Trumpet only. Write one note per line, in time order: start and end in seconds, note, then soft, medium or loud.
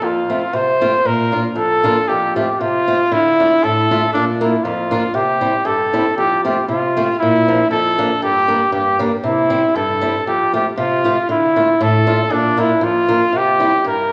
0.04 0.56 F4 medium
0.54 1.08 C5 loud
1.06 1.42 A#4 medium
1.57 2.10 A4 medium
2.08 2.35 G4 medium
2.36 2.61 G4 medium
2.60 3.14 F4 loud
3.12 3.65 E4 medium
3.63 4.12 A4 loud
4.13 4.25 D4 medium
4.41 4.65 E4 medium
4.63 5.16 F4 medium
5.15 5.67 G4 medium
5.66 6.16 A4 medium
6.17 6.43 G4 medium
6.44 6.67 G4 medium
6.68 7.16 F4 medium
7.19 7.67 E4 medium
7.71 8.19 A4 loud
8.23 8.70 G4 medium
8.73 8.98 G4 medium
9.25 9.77 E4 medium
9.76 10.27 A4 medium
10.27 10.53 G4 medium
10.55 10.66 G4 medium
10.79 11.26 F4 medium
11.30 11.84 E4 medium
11.82 12.33 A4 loud
12.32 12.61 D4 medium
12.59 12.85 E4 medium
12.83 13.38 F4 medium
13.37 13.87 G4 loud
13.87 14.12 A#4 medium